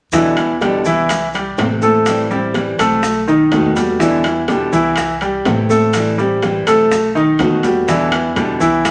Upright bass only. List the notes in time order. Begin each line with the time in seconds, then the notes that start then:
0.12 E2
0.85 C2
1.57 A1
2.79 B1
3.51 E2
4.73 C2
5.46 A1
6.66 B1
7.39 E2
8.60 C2